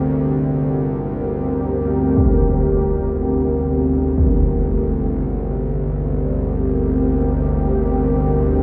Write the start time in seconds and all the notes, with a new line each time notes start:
Already playing: G1 D2 C4 G4 A#4
2.17 G1 D2, impact
4.18 impact